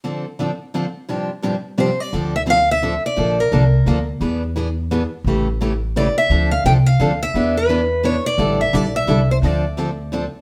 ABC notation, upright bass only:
X:1
M:3/4
L:1/8
Q:"Swing" 1/4=172
K:Dm
V:1 name="Upright bass" clef=bass
z6 | z6 | D,,6 | B,,,2 C,,2 D,,2 |
E,,6 | A,,,6 | D,,2 C,,2 D,,2 | E,,6 |
A,,,2 B,,,2 C,,2 | D,,6 |]